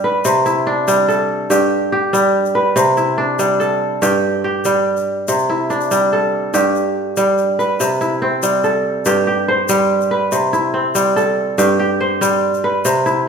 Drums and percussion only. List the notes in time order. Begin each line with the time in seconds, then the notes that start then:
0.25 shaker
0.46 shaker
0.88 shaker
1.09 shaker
1.51 shaker
2.14 shaker
2.45 shaker
2.77 shaker
2.97 shaker
3.39 shaker
3.60 shaker
4.02 shaker
4.65 shaker
4.97 shaker
5.28 shaker
5.39 shaker
5.70 shaker
5.81 shaker
5.91 shaker
6.54 shaker
6.75 shaker
7.17 shaker
7.38 shaker
7.60 shaker
7.80 shaker
8.01 shaker
8.43 shaker
8.63 shaker
9.05 shaker
9.69 shaker
10.01 shaker
10.32 shaker
10.53 shaker
10.95 shaker
11.17 shaker
11.59 shaker
12.22 shaker
12.54 shaker
12.85 shaker
13.06 shaker